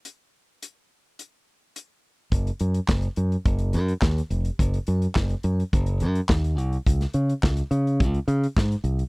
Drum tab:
HH |x---x---x---x---|xxxx-xxxxxxx-xxx|xxxx-xxxxxxx-xxx|xxxx-xxxxxxx-xxx|
CP |----------------|----x-------x---|----x-------x---|----x-------x---|
SD |----------------|----o-------o---|----o-------o---|-o--o-------o---|
BD |----------------|o---o---o---o---|o---o---o---o---|o---o---o---o---|